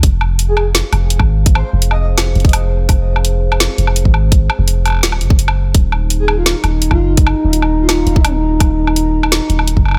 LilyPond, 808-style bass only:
\new Staff \with { instrumentName = "808-style bass" } { \clef bass \time 4/4 \key f \phrygian \tempo 4 = 168 f,,2~ f,,16 r16 f,,8. aes,,8.~ | aes,,8 r16 f,,4.~ f,,16 f,,4. | f,,2~ f,,16 r16 f,,8. aes,,8.~ | aes,,8 r16 f,,4~ f,,16 ees,,8 ges,,4. |
ees,,2~ ees,,16 r16 ees,,8. ges,,8.~ | ges,,8 r16 ees,,4.~ ees,,16 ees,,4. | ees,,2~ ees,,16 r16 ees,,8. ges,,8. | }